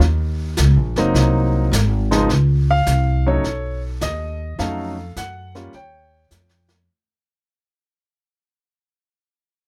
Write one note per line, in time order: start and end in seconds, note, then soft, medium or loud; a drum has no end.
0.00 0.56 D#2 medium
0.00 brush sweep soft
0.00 snare soft
0.57 0.76 C#2 medium
0.57 snare medium
0.57 hi-hat pedal medium
0.76 0.96 A#1 medium
0.96 1.13 F#1 medium
0.96 1.69 F#3 medium
0.96 1.69 A#3 medium
0.96 1.70 C4 medium
0.96 1.70 D#4 medium
0.96 snare soft
1.14 1.70 C2 medium
1.14 brush sweep soft
1.14 snare soft
1.72 2.28 G#1 medium
1.72 snare medium
1.72 hi-hat pedal medium
2.11 2.28 C#2 medium
2.11 2.28 F3 medium
2.11 2.28 G#3 medium
2.11 2.28 C4 medium
2.11 2.28 D#4 medium
2.11 snare soft
2.29 2.85 C#2 medium
2.29 brush sweep soft
2.29 snare soft
2.71 3.29 F5 loud
2.86 3.42 C2 medium
2.86 snare medium
2.86 hi-hat pedal soft
3.26 3.43 F#3 medium
3.26 3.43 A3 soft
3.26 3.43 C#4 medium
3.26 3.43 D#4 medium
3.26 4.39 A4 medium
3.26 3.80 C#5 medium
3.44 4.00 B1 medium
3.44 brush sweep soft
3.44 snare soft
4.01 4.57 D#2 medium
4.01 4.55 D#5 medium
4.01 snare medium
4.01 hi-hat pedal medium
4.58 5.15 F2 medium
4.58 4.94 F#3 medium
4.58 4.94 A3 medium
4.58 4.94 C#4 medium
4.58 4.95 D#4 medium
4.58 5.71 A4 medium
4.58 5.18 F5 medium
4.58 brush sweep soft
4.58 snare soft
5.16 5.72 F#2 medium
5.16 5.76 F#5 medium
5.16 snare soft
5.16 hi-hat pedal medium
5.55 5.72 G3 medium
5.55 5.72 A#3 medium
5.55 5.72 C#4 medium
5.55 5.72 F4 medium
5.55 snare soft
5.73 6.29 D#2 medium
5.73 6.85 C#5 medium
5.73 6.66 G5 medium
5.73 brush sweep soft
5.73 snare soft
6.31 6.87 F2 medium
6.31 snare soft
6.31 hi-hat pedal medium
6.49 snare soft
6.68 snare medium